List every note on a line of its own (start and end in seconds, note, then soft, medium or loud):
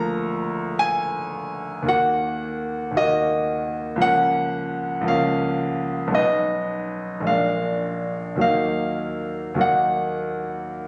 0.00 1.82 D2 medium
0.00 1.83 F3 soft
0.00 1.84 A#3 soft
0.00 1.85 F4 soft
0.00 0.82 A#5 medium
0.79 1.88 G#5 loud
1.82 2.90 D#2 soft
1.82 2.91 D#3 soft
1.82 2.93 A#3 soft
1.88 2.94 F#4 soft
1.88 2.98 F#5 medium
2.91 3.97 D#2 soft
2.91 3.98 D#3 soft
2.95 3.98 A#3 soft
2.95 4.00 F#4 soft
2.95 4.03 D#5 medium
3.96 4.99 C#2 medium
3.96 5.02 F3 soft
4.00 5.04 A#3 soft
4.00 5.05 C#4 soft
4.00 5.08 F#5 loud
5.01 6.08 C#2 medium
5.01 6.09 F3 soft
5.05 6.11 A#3 soft
5.05 6.12 C#4 soft
5.05 6.15 F5 medium
6.08 7.20 B1 medium
6.08 7.21 G#3 soft
6.12 7.22 B3 soft
6.12 7.23 D#4 soft
6.12 7.27 D#5 medium
7.20 8.36 A#1 soft
7.20 8.37 G#3 soft
7.25 8.38 A#3 soft
7.25 8.39 D4 soft
7.25 8.40 F5 medium
8.36 9.53 D#2 soft
8.36 9.55 F#3 soft
8.36 9.56 A#3 soft
8.41 9.57 D#4 soft
8.41 9.60 F5 medium
9.54 10.88 D#2 medium
9.54 10.88 F#3 soft
9.59 10.88 A#3 soft
9.59 10.88 D#4 soft
9.59 10.88 F#5 medium